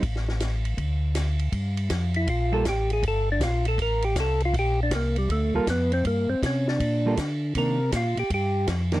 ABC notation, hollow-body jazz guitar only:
X:1
M:4/4
L:1/8
Q:"Swing" 1/4=160
K:Gm
V:1 name="Hollow-body jazz guitar"
z8 | z4 z [G,B,FA] z2 | z8 | z4 z [G,B,FA] z2 |
z4 z [G,B,FA] z2 | [E,B,D] z6 [E,B,D] |]